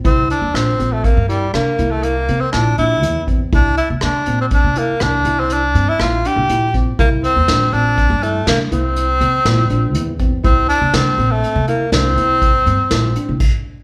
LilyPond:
<<
  \new Staff \with { instrumentName = "Tine electric piano" } { \time 7/4 \key c \mixolydian \tempo 4 = 121 e'4 d'8 c'4 e'8 d'8 e'4 c'8 e'8 d'8 e'8 c'8 | e'4 d'8 c'4 e'8 d'8 e'4 c'8 e'8 d'8 e'8 c'8 | e'4 d'8 c'4 e'8 d'8 e'4 c'8 e'8 d'8 e'8 c'8 | e'4 d'8 c'4 e'8 d'8 e'4 c'8 e'8 d'8 r4 | }
  \new Staff \with { instrumentName = "Tenor saxophone" } { \time 7/4 \key c \mixolydian c'8 d'8 c'8. a16 bes8 g8 bes8. a16 bes8. c'16 d'8 e'4 r8 | d'8 e'8 d'8. c'16 d'8 bes8 d'8. c'16 d'8. e'16 f'8 g'4 r8 | bes8 c'4 d'4 a8 bes8 c'2. r8 | c'8 d'8 c'8. a8. bes8 c'2. r4 | }
  \new Staff \with { instrumentName = "Upright bass" } { \clef bass \time 7/4 \key c \mixolydian c,8 r16 e,16 bes,,8 bes,,8 r16 g,8. c16 r16 c,4 c16 r16 bes,,8 bes,,8 e,4 | c,8 r16 c16 c16 r16 bes,,8 r16 c8 r16 c,8 c,4 g,16 r16 bes,,8 r16 c,16 bes,,4 | c,8 r16 e,16 bes,,8 bes,,8 r16 g,8. c16 r16 c,4 c16 r16 bes,,8 bes,,8 e,4 | c,8 r16 c16 c16 r16 bes,,8 r16 c8 r16 c,8 c,4 g,16 r16 bes,,8 r16 c,16 r4 | }
  \new DrumStaff \with { instrumentName = "Drums" } \drummode { \time 7/4 <hh bd>8 hh8 <hh ss>8 hh8 <hh bd>8 hh8 <hh ss>8 hh8 hh8 hh8 <hh ss>8 hh8 hh8 <hh bd>8 | <hh bd>8 hh8 <hh ss>8 hh8 <hh bd>8 hh8 <hh ss>8 hh8 hh8 hh8 <hh ss>8 hh8 hh8 <hh bd>8 | <hh bd>8 hh8 <hh sn>8 hh8 <hh bd>8 hh8 <hh sn>8 hh8 hh8 hh8 <hh sn>8 hh8 hh8 <hh bd>8 | <hh bd>8 hh8 <hh sn>8 hh8 hh8 hh8 <hh sn>8 hh8 <hh bd>8 hh8 <hh sn>8 hh8 <cymc bd>4 | }
>>